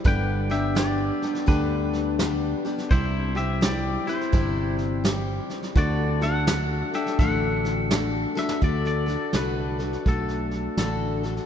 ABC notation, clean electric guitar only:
X:1
M:4/4
L:1/16
Q:"Swing" 1/4=84
K:Dmix
V:1 name="Clean electric guitar"
[Bg]2 [Ge]2 [Gd]4 [DB]6 z2 | [Ec]2 [Ge]2 [Gd]2 [Ec]4 z6 | [Fd]2 [Af]4 [Ge]2 [Af]6 e2 | d d3 B4 A4 A3 z |]